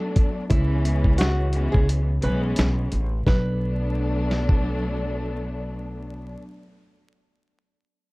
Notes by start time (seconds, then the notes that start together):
Already playing: F#3 A3 B3 D4 A4
0.16 kick, closed hi-hat
0.50 C#2 E3 G#3 B3 C#4 E4, kick, closed hi-hat
0.85 closed hi-hat
1.04 kick
1.18 F#4, snare, closed hi-hat
1.53 E3 G#3 B3 C#4, closed hi-hat
1.72 C#2 G#4, kick
1.89 closed hi-hat
2.21 B1 E3 G#3 B3 C#4 B4, closed hi-hat
2.56 B1, snare, closed hi-hat
2.92 A1, closed hi-hat
3.26 B1 F#3 A3 B3 D4 B4, kick, snare
4.31 snare
4.49 kick